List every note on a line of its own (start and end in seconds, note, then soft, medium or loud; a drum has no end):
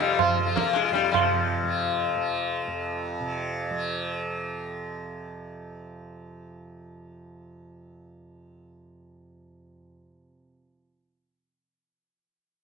0.00 0.90 F2 medium
0.00 1.13 C3 medium
0.00 0.39 F3 medium
0.00 0.19 G3 medium
0.00 tabla te medium
0.10 0.27 F4 soft
0.19 0.37 F3 medium
0.19 tabla na loud
0.19 tabla ge loud
0.28 0.36 F4 soft
0.37 1.64 F3 medium
0.37 0.45 F4 soft
0.46 0.64 F4 soft
0.56 0.76 A#3 loud
0.56 tabla ke medium
0.65 0.83 F4 soft
0.73 0.93 G#3 loud
0.73 tabla te medium
0.84 1.02 F4 soft
0.91 2.67 F2 medium
0.91 1.11 G3 loud
0.96 tabla te medium
1.04 1.21 F4 soft
1.12 3.20 C3 medium
1.12 2.60 F3 medium
1.12 tabla na loud
1.12 tabla ge loud
1.64 2.16 F3 medium
2.16 3.70 F3 medium
2.67 9.82 F2 medium
3.20 10.35 C3 medium
3.70 10.71 F3 medium